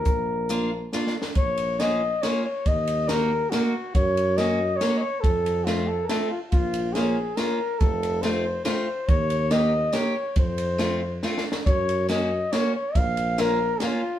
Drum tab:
RD |------------------|x--x--x-----x-----|x--x--x-----x-----|x--x--x-----x-----|
HH |x-----x-----------|------------------|------------------|------------------|
SD |------------o-o-o-|------o-----o-----|------o-----o-----|------o-----o-----|
BD |o-----------------|o-----------------|o-----------------|o-----------------|

RD |x--x--x-----x-----|x--x--x-----x-----|x--x--x-----x-----|x--x--x-----x-----|
HH |------------------|------------------|------------------|------------------|
SD |------o-----o-----|------o-----o-----|------o-----o-----|------o-----o-----|
BD |o-----------------|o-----------------|o-----------------|o-----------------|

RD |x--x--x-----------|x--x--x-----x-----|x--x--x-----x-----|
HH |------------------|------------------|------------------|
SD |------o-----o-o-o-|------o-----o-----|------o-----o-----|
BD |o-----------------|o-----------------|o-----------------|